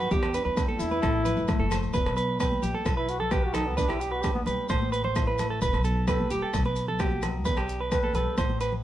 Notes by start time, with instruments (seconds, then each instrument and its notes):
Already playing: muted trumpet F#4
0.00 clean electric guitar B4, maracas
0.11 nylon-string guitar E2 D4, upright bass E2, muted trumpet G4, clean electric guitar G4, kick, maracas
0.23 cross-stick, low agogo
0.34 nylon-string guitar D4, clean electric guitar B4, closed hi-hat, maracas
0.45 upright bass E2, clean electric guitar B4
0.57 nylon-string guitar G3, kick, cross-stick, low agogo, maracas
0.68 clean electric guitar A4, high conga
0.79 upright bass E2, nylon-string guitar D4, muted trumpet E4, closed hi-hat, low conga, maracas
0.91 clean electric guitar B4, high conga, maracas
1.02 upright bass A1, nylon-string guitar A2 C4, clean electric guitar A4, kick, cross-stick, low agogo, maracas
1.25 clean electric guitar B4, muted nylon-string guitar stroke, closed hi-hat, low conga, maracas
1.37 upright bass F#1, maracas
1.48 nylon-string guitar A3, kick, cross-stick, low conga, low agogo, maracas
1.59 upright bass F#1, clean electric guitar A4, high conga
1.70 nylon-string guitar C5, cross-stick, closed hi-hat, low conga, low agogo, maracas
1.83 maracas
1.93 upright bass E1, nylon-string guitar E2 B4, clean electric guitar B4, kick, maracas
2.06 upright bass B1, cross-stick, low agogo
2.16 clean electric guitar B4, closed hi-hat, maracas
2.40 nylon-string guitar G4, clean electric guitar B4, kick, cross-stick, low agogo, maracas
2.52 high conga
2.62 upright bass A#1, nylon-string guitar G3, clean electric guitar G4, closed hi-hat, low conga, maracas
2.74 clean electric guitar A4
2.85 upright bass B1, nylon-string guitar B4, muted nylon-string guitar stroke, kick, cross-stick, low agogo, maracas
2.96 muted trumpet E4, clean electric guitar B4
3.08 muted trumpet F#4, closed hi-hat, maracas
3.20 clean electric guitar A4, muted trumpet A4, low conga
3.31 nylon-string guitar F#4, clean electric guitar G4, muted trumpet B4, kick, cross-stick, low agogo, maracas
3.44 muted trumpet F#4
3.54 nylon-string guitar D#3, muted trumpet D#4, clean electric guitar A4, cross-stick, closed hi-hat, low conga, low agogo, maracas
3.66 muted trumpet B3
3.77 upright bass E2, nylon-string guitar E2 B4, muted trumpet D4, clean electric guitar B4, kick, maracas
3.88 upright bass B1, muted trumpet E4, clean electric guitar G4, cross-stick, low agogo
4.00 muted trumpet G4, closed hi-hat, maracas
4.11 muted trumpet F#4, clean electric guitar B4
4.21 nylon-string guitar D4, muted trumpet G4, kick, cross-stick, low agogo, maracas
4.34 muted trumpet B3, high conga
4.46 upright bass B1, nylon-string guitar G3, clean electric guitar B4, closed hi-hat, low conga, maracas
4.69 upright bass A1, nylon-string guitar A2 C5, clean electric guitar C5, kick, cross-stick, low agogo, maracas
4.82 high conga
4.92 clean electric guitar B4, closed hi-hat, maracas
5.04 clean electric guitar C5, low conga
5.15 nylon-string guitar E4, kick, cross-stick, low agogo, maracas
5.27 clean electric guitar B4, high conga
5.38 nylon-string guitar A3, cross-stick, closed hi-hat, low conga, low agogo, maracas
5.50 clean electric guitar A4
5.61 upright bass E1, clean electric guitar B4, nylon-string guitar B4, muted nylon-string guitar stroke, kick, maracas
5.73 upright bass B1, cross-stick, low agogo
5.84 clean electric guitar A4, closed hi-hat, maracas
6.07 nylon-string guitar G4, muted trumpet A4, clean electric guitar B4, kick, cross-stick, low agogo, maracas
6.20 high conga
6.30 upright bass E1, nylon-string guitar G3, muted trumpet G4, clean electric guitar G4, closed hi-hat, maracas
6.42 clean electric guitar A4
6.53 upright bass B1, nylon-string guitar B2 B4, kick, cross-stick, low agogo, maracas
6.65 clean electric guitar B4, high conga
6.75 closed hi-hat, maracas
6.88 clean electric guitar A4, low conga
6.99 nylon-string guitar F#4, clean electric guitar G4, kick, cross-stick, low agogo, maracas
7.11 high conga
7.22 nylon-string guitar D#3, cross-stick, closed hi-hat, low conga, low agogo, maracas
7.44 nylon-string guitar E2 B4, upright bass E2, clean electric guitar B4, kick, maracas
7.57 upright bass B1, clean electric guitar G4, cross-stick, low agogo
7.69 closed hi-hat, maracas
7.80 clean electric guitar B4
7.92 nylon-string guitar G4, muted trumpet B4, kick, cross-stick, low agogo, maracas
8.03 clean electric guitar A4, high conga
8.13 upright bass B1, nylon-string guitar G3, muted trumpet A4, clean electric guitar B4, closed hi-hat, low conga, maracas
8.37 upright bass A1, nylon-string guitar A2 C5, clean electric guitar C5, kick, cross-stick, high conga, low agogo, maracas
8.50 high conga
8.61 clean electric guitar B4, closed hi-hat, maracas
8.72 low conga